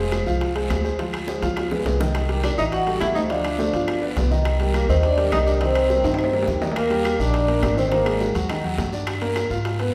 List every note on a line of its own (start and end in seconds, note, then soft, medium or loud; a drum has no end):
0.00 0.21 F1 medium
0.00 0.21 G#3 medium
0.00 0.21 G#4 medium
0.00 0.21 C5 medium
0.12 high bongo medium
0.12 high timbale medium
0.12 low timbale soft
0.12 short guiro medium
0.12 claves medium
0.26 0.67 C2 medium
0.26 0.50 F3 medium
0.26 0.50 F4 medium
0.26 0.50 F5 medium
0.26 short guiro medium
0.41 high bongo medium
0.41 high timbale medium
0.41 long guiro medium
0.55 0.79 G#3 medium
0.55 0.79 G#4 medium
0.55 0.79 C5 medium
0.55 high bongo soft
0.55 high timbale medium
0.70 1.36 D2 medium
0.70 high bongo soft
0.70 low bongo medium
0.70 high timbale medium
0.70 low timbale medium
0.70 short guiro medium
0.70 claves medium
0.84 0.96 G#3 medium
0.84 0.96 G#4 medium
0.84 0.96 C5 medium
0.84 high bongo soft
0.84 short guiro medium
0.99 1.23 F3 medium
0.99 1.23 F4 medium
0.99 1.23 F5 medium
0.99 high bongo medium
0.99 high timbale medium
0.99 long guiro medium
1.13 high bongo soft
1.13 high timbale medium
1.13 claves medium
1.27 1.39 G#3 medium
1.27 1.39 G#4 medium
1.27 1.40 C5 medium
1.27 high bongo medium
1.27 low timbale soft
1.27 short guiro medium
1.42 1.82 C#2 medium
1.42 1.66 F3 medium
1.42 1.66 F4 medium
1.42 1.66 F5 medium
1.42 high bongo medium
1.42 high timbale medium
1.42 short guiro medium
1.56 high bongo medium
1.56 high timbale medium
1.56 long guiro medium
1.56 claves medium
1.71 1.83 G#3 medium
1.71 1.83 G#4 medium
1.71 1.83 B4 medium
1.71 low bongo medium
1.85 2.52 C2 medium
1.85 1.97 G#3 medium
1.85 1.98 G#4 medium
1.85 1.98 B4 medium
1.85 low bongo medium
1.85 high timbale medium
1.85 low timbale medium
1.85 short guiro medium
2.00 2.24 D#3 medium
2.00 2.24 D#4 medium
2.00 2.24 D#5 medium
2.00 low bongo loud
2.00 short guiro medium
2.15 high bongo medium
2.15 high timbale medium
2.15 long guiro medium
2.15 claves medium
2.29 2.52 G3 medium
2.29 2.53 G4 medium
2.29 2.53 A#4 medium
2.29 high bongo soft
2.29 high timbale medium
2.43 2.50 D4 medium
2.43 2.50 D5 medium
2.43 high bongo medium
2.43 high timbale medium
2.43 low timbale medium
2.43 short guiro medium
2.43 claves medium
2.57 2.98 A1 medium
2.57 2.81 E3 medium
2.57 2.64 D#4 medium
2.57 2.81 E4 medium
2.57 2.64 D#5 medium
2.57 2.82 E5 medium
2.57 short guiro medium
2.72 2.99 F#4 medium
2.72 2.99 F#5 medium
2.72 high bongo medium
2.72 high timbale medium
2.72 long guiro medium
2.87 3.10 G3 medium
2.87 3.10 G4 medium
2.87 3.11 A4 medium
2.87 high bongo soft
2.87 high timbale medium
3.00 3.67 D2 medium
3.00 3.07 E4 medium
3.00 3.07 E5 medium
3.00 high bongo soft
3.00 low bongo medium
3.00 high timbale medium
3.00 low timbale medium
3.00 short guiro medium
3.00 claves medium
3.14 3.27 A3 medium
3.14 3.21 D#4 medium
3.14 3.28 A4 medium
3.14 3.28 C5 medium
3.14 3.22 D#5 medium
3.14 high bongo soft
3.14 short guiro medium
3.29 3.54 F3 medium
3.29 4.12 D4 medium
3.29 3.54 F4 medium
3.29 4.12 D5 medium
3.29 3.54 F5 medium
3.29 high bongo medium
3.29 high timbale medium
3.29 long guiro medium
3.44 high bongo soft
3.44 high timbale medium
3.44 claves medium
3.59 3.70 A3 medium
3.59 3.71 A4 medium
3.59 3.71 C5 medium
3.59 high bongo medium
3.59 low timbale soft
3.59 short guiro medium
3.73 4.13 G1 medium
3.73 3.97 F3 medium
3.73 3.97 F4 medium
3.73 3.97 F5 medium
3.73 high timbale medium
3.73 short guiro medium
3.88 high bongo medium
3.88 high timbale medium
3.88 long guiro medium
3.88 claves medium
4.02 4.14 B3 medium
4.02 4.14 B4 medium
4.02 4.14 D5 medium
4.02 high bongo soft
4.16 4.83 C2 medium
4.16 4.28 B3 medium
4.16 4.29 B4 medium
4.16 4.29 D5 medium
4.16 high bongo soft
4.16 low bongo medium
4.16 high timbale medium
4.16 low timbale medium
4.16 short guiro medium
4.31 4.55 D#3 medium
4.31 4.55 D#4 medium
4.31 4.55 D#5 medium
4.31 high bongo soft
4.31 short guiro medium
4.45 high bongo medium
4.45 high timbale medium
4.45 long guiro medium
4.45 claves medium
4.60 4.84 G3 medium
4.60 4.84 G4 medium
4.60 4.84 A#4 medium
4.60 high bongo soft
4.60 high timbale medium
4.74 4.88 A#3 medium
4.74 4.89 A#4 medium
4.74 high bongo medium
4.74 high timbale medium
4.74 low timbale soft
4.74 short guiro medium
4.74 claves medium
4.88 5.29 D#2 medium
4.88 5.13 D#3 medium
4.88 4.96 C4 medium
4.88 5.13 D#4 medium
4.88 4.96 C5 medium
4.88 5.13 D#5 medium
4.88 short guiro medium
5.03 5.30 D4 medium
5.03 5.33 D5 medium
5.03 high bongo medium
5.03 high timbale medium
5.03 long guiro medium
5.17 5.41 G3 medium
5.17 5.41 G4 medium
5.17 5.41 A#4 medium
5.17 high bongo soft
5.17 high timbale medium
5.31 5.98 C2 medium
5.31 5.39 D#4 medium
5.31 5.39 D#5 loud
5.31 high bongo soft
5.31 low bongo medium
5.31 high timbale medium
5.31 low timbale medium
5.31 short guiro medium
5.31 claves medium
5.46 5.58 G3 medium
5.46 5.53 D4 medium
5.46 5.58 G4 medium
5.46 5.59 A#4 medium
5.46 5.53 D5 medium
5.46 high bongo soft
5.46 short guiro medium
5.60 5.85 D#3 medium
5.60 6.43 C4 medium
5.60 5.85 D#4 medium
5.60 6.43 C5 medium
5.60 5.85 D#5 medium
5.60 high bongo medium
5.60 high timbale medium
5.60 long guiro medium
5.75 high bongo soft
5.75 high timbale medium
5.75 claves medium
5.89 6.01 G3 medium
5.89 6.01 G4 medium
5.89 6.02 A#4 medium
5.89 high bongo medium
5.89 low timbale medium
5.89 short guiro medium
6.04 6.44 G2 medium
6.04 6.28 D#3 medium
6.04 6.28 D#4 medium
6.04 6.28 D#5 medium
6.04 high timbale medium
6.04 short guiro medium
6.14 high timbale medium
6.18 high bongo medium
6.18 long guiro medium
6.18 claves medium
6.24 low timbale medium
6.32 6.44 G3 medium
6.32 6.44 G4 medium
6.32 6.45 A#4 medium
6.32 high bongo soft
6.32 low timbale medium
6.43 low timbale medium
6.47 7.14 D#2 medium
6.47 6.59 G3 medium
6.47 6.59 G4 medium
6.47 6.59 A#4 medium
6.47 high bongo soft
6.47 low bongo medium
6.47 short guiro medium
6.61 6.73 D#3 medium
6.61 6.73 D#4 medium
6.61 6.74 D#5 medium
6.61 high bongo soft
6.61 low timbale medium
6.61 short guiro medium
6.72 low timbale medium
6.76 7.16 A#3 medium
6.76 7.21 A#4 medium
6.76 high bongo medium
6.76 high timbale medium
6.76 long guiro medium
6.76 claves medium
6.90 7.14 G3 medium
6.90 7.14 G4 medium
6.90 high bongo soft
6.90 high timbale medium
7.05 high bongo medium
7.05 high timbale medium
7.05 low timbale medium
7.05 short guiro medium
7.05 claves medium
7.19 7.59 A#1 medium
7.19 7.74 D4 medium
7.19 7.43 D#4 medium
7.19 7.79 D5 medium
7.19 7.43 D#5 medium
7.19 short guiro medium
7.34 high bongo medium
7.34 high timbale medium
7.34 long guiro medium
7.48 7.72 A#3 medium
7.48 7.72 A#4 medium
7.48 high bongo soft
7.48 high timbale medium
7.62 8.29 G#1 medium
7.62 high bongo soft
7.62 low bongo medium
7.62 high timbale medium
7.62 low timbale medium
7.62 short guiro medium
7.62 claves medium
7.77 7.89 D#3 medium
7.77 7.91 C4 medium
7.77 7.89 D#4 medium
7.77 7.91 C5 medium
7.77 high bongo soft
7.77 short guiro medium
7.91 8.03 D#3 medium
7.91 8.32 A#3 medium
7.91 8.03 D#4 medium
7.91 8.32 A#4 medium
7.91 high bongo medium
7.91 high timbale medium
7.91 long guiro medium
8.05 8.29 G#3 medium
8.05 8.30 G#4 medium
8.05 high bongo soft
8.05 high timbale medium
8.05 claves medium
8.21 high bongo medium
8.21 low timbale medium
8.21 short guiro medium
8.34 8.75 D#2 medium
8.34 8.47 F#3 medium
8.34 8.47 F#4 medium
8.34 high timbale medium
8.34 short guiro medium
8.49 8.61 D#3 medium
8.49 8.61 D#4 medium
8.49 high bongo medium
8.49 high timbale medium
8.49 long guiro medium
8.49 claves medium
8.64 8.87 F#3 medium
8.64 8.88 F#4 medium
8.64 high bongo soft
8.78 9.45 G2 medium
8.78 high bongo soft
8.78 low bongo medium
8.78 high timbale medium
8.78 low timbale medium
8.78 short guiro medium
8.93 9.16 D4 medium
8.93 9.17 D5 medium
8.93 high bongo soft
8.93 short guiro medium
9.07 high bongo medium
9.07 high timbale loud
9.07 long guiro medium
9.07 claves medium
9.21 9.45 A#3 medium
9.21 9.45 A#4 medium
9.21 high bongo soft
9.21 high timbale medium
9.36 high bongo medium
9.36 high timbale medium
9.36 low timbale medium
9.36 short guiro medium
9.36 claves medium
9.50 9.90 G#2 medium
9.50 9.74 F4 medium
9.50 9.74 F5 medium
9.50 short guiro medium
9.65 high bongo medium
9.65 high timbale medium
9.65 long guiro medium
9.79 9.94 B3 medium
9.79 9.94 B4 medium
9.79 high bongo soft
9.79 high timbale medium